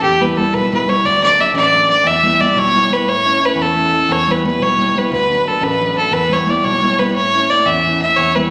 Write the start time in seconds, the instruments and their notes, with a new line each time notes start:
0.02 grand piano E2, fiddle G4
0.21 grand piano G3 B3 E4, fiddle B4
0.37 grand piano G3 B3 E4, fiddle A4
0.54 grand piano B1, fiddle B4
0.73 grand piano G3 B3 E4, fiddle B4
0.87 grand piano G3 B3 E4, fiddle C#5
1.04 grand piano D2, fiddle D5
1.22 grand piano F#3 A3 D4, fiddle D5
1.38 grand piano F#3 A3 D4, fiddle E5
1.54 grand piano A1, fiddle D5
1.71 grand piano F#3 A3 D4
1.88 grand piano F#3 A3 D4, fiddle D5
2.04 grand piano E2, fiddle E5
2.23 grand piano G3 B3 E4
2.40 grand piano G3 B3 E4, fiddle D5
2.55 grand piano B1, fiddle C#5
2.73 grand piano G3 B3 E4
2.90 grand piano G3 B3 E4, fiddle B4
3.06 grand piano A2, fiddle C#5
3.25 grand piano A3 C#4 E4
3.40 grand piano A3 C#4 E4
3.46 fiddle B4
3.55 grand piano E2
3.62 fiddle A4
3.75 grand piano A3 C#4 E4
3.92 grand piano A3 C#4 E4
4.09 grand piano E2, fiddle C#5
4.27 grand piano G3 B3 E4
4.31 fiddle B4
4.44 grand piano G3 B3 E4, fiddle B4
4.59 grand piano B1, fiddle C#5
4.78 grand piano G3 B3 E4
4.95 grand piano G3 B3 E4, fiddle B4
5.10 grand piano D2, fiddle B4
5.30 grand piano F#3 A3 D4
5.41 grand piano F#3 A3, fiddle B4
5.46 grand piano D4, fiddle A4
5.61 grand piano A1, fiddle B4
5.79 grand piano F#3 A3 D4
5.94 grand piano F#3 A3 D4, fiddle A4
6.11 grand piano E2, fiddle B4
6.29 grand piano G3 B3 E4, fiddle C#5
6.47 grand piano G3 B3 E4, fiddle D5
6.64 grand piano B1, fiddle C#5
6.81 grand piano G3 B3 E4
6.99 grand piano G3 B3 E4, fiddle B4
7.16 grand piano A2, fiddle C#5
7.33 grand piano A3 C#4 E4
7.50 grand piano A3 C#4 E4, fiddle D5
7.65 grand piano E2, fiddle E5
7.86 grand piano A3 C#4 E4
8.01 grand piano A3 C#4 E4, fiddle E5
8.16 grand piano E2, fiddle C#5
8.35 grand piano G3 B3 E4, fiddle B4